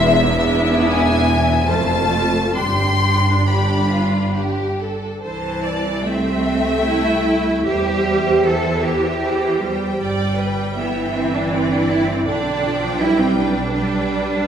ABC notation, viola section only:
X:1
M:3/4
L:1/16
Q:1/4=76
K:C
V:1 name="Viola section" clef=bass
[B,D]8 [A,F]4 | D8- D3 z | E,4 A,8 | G,4 E,4 E,2 G,2 |
G,4 E,8 | D,2 F,2 G,4 G,4 |]